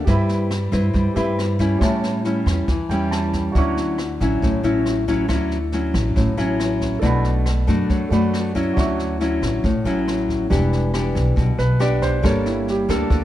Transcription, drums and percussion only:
0.07 kick, snare
0.29 snare
0.51 cross-stick, snare
0.73 kick, snare
0.94 kick, snare
1.16 snare
1.39 cross-stick, snare
1.59 kick, snare
1.81 kick, cross-stick, snare
2.03 snare
2.25 snare
2.46 kick, cross-stick, snare
2.68 kick, snare
2.90 snare
3.12 cross-stick, snare
3.33 kick, snare
3.55 kick, snare
3.77 snare
3.98 cross-stick, snare
4.21 kick, snare
4.42 kick, snare
4.64 snare
4.86 cross-stick, snare
5.08 kick, snare
5.29 kick, cross-stick, snare
5.51 snare
5.72 snare
5.94 kick, cross-stick, snare
6.16 kick, snare
6.38 snare
6.60 cross-stick, snare
6.81 kick, snare
7.03 kick, snare
7.24 snare
7.46 cross-stick, snare
7.68 kick, snare
7.90 kick, snare
8.12 snare
8.34 cross-stick, snare
8.55 kick, snare
8.77 kick, cross-stick, snare
8.99 snare
9.21 snare
9.42 kick, cross-stick, snare
9.64 kick, snare
9.86 snare
10.08 cross-stick, snare
10.29 kick, snare
10.51 kick, snare
10.73 snare
10.94 cross-stick, snare
11.15 kick, snare
11.37 kick, snare
11.59 snare
11.80 cross-stick, snare
12.02 kick, snare
12.24 kick, cross-stick, snare
12.46 snare
12.68 snare
12.89 kick, cross-stick, snare
13.10 kick, snare

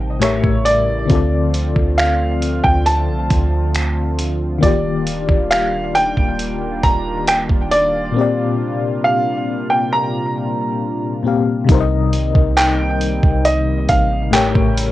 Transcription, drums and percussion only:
0.22 finger snap, closed hi-hat
0.44 kick
0.66 closed hi-hat
1.10 kick, closed hi-hat
1.54 closed hi-hat
1.76 kick
1.98 finger snap, closed hi-hat
2.42 closed hi-hat
2.64 kick
2.86 closed hi-hat
3.30 kick, closed hi-hat
3.74 finger snap, closed hi-hat
4.19 closed hi-hat
4.63 kick, closed hi-hat
5.07 closed hi-hat
5.29 kick
5.51 finger snap, closed hi-hat
5.95 closed hi-hat
6.17 kick
6.39 closed hi-hat
6.83 kick, closed hi-hat
7.28 finger snap, closed hi-hat
7.50 kick
7.72 closed hi-hat
11.69 kick, closed hi-hat
12.13 closed hi-hat
12.35 kick
12.57 clap, closed hi-hat
13.01 closed hi-hat
13.23 kick
13.45 closed hi-hat
13.89 kick, closed hi-hat
14.33 clap, closed hi-hat
14.55 kick
14.78 closed hi-hat

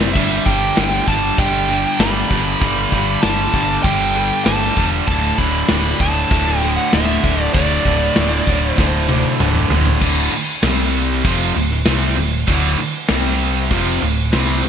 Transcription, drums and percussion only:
0.01 snare
0.16 kick, crash
0.46 kick
0.77 snare, crash
1.08 kick
1.38 kick, crash
2.00 snare, crash
2.31 kick
2.62 kick, crash
2.92 kick
3.23 snare, crash
3.54 kick
3.84 kick, crash
4.46 snare, crash
4.62 snare
4.77 kick
5.08 kick, crash
5.38 kick
5.69 snare, crash
6.00 kick
6.31 kick, crash
6.47 snare
6.93 snare, crash
7.09 snare
7.24 kick
7.54 kick, crash
7.85 kick
8.16 snare, crash
8.47 kick
8.78 kick, snare
9.09 high tom
9.40 mid tom
9.55 mid tom
9.70 floor tom
9.86 floor tom
10.01 kick, crash
10.33 crash
10.63 snare, crash
10.93 crash
11.25 kick, crash
11.56 crash
11.71 snare
11.86 snare, crash
12.16 crash
12.47 kick, crash
12.78 crash
13.09 snare, crash
13.40 crash
13.71 kick, crash
14.02 crash
14.33 snare, crash
14.64 crash

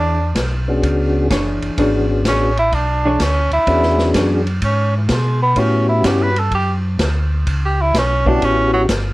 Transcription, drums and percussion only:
0.35 kick, snare, hi-hat pedal, ride
0.83 kick, ride
1.30 kick, snare, hi-hat pedal, ride
1.62 ride
1.78 kick, ride
2.25 kick, snare, hi-hat pedal, ride
2.57 ride
2.72 kick, ride
3.20 kick, snare, hi-hat pedal, ride
3.51 ride
3.67 kick, ride
3.82 snare
3.98 snare
4.14 kick, snare, hi-hat pedal, ride
4.46 ride
4.61 kick, ride
5.08 kick, snare, hi-hat pedal, ride
5.56 kick, ride
6.04 kick, snare, hi-hat pedal, ride
6.36 ride
6.51 kick, ride
6.99 kick, snare, hi-hat pedal, ride
7.47 kick, ride
7.94 kick, snare, hi-hat pedal, ride
8.26 kick
8.42 kick, ride
8.89 kick, snare, hi-hat pedal, ride

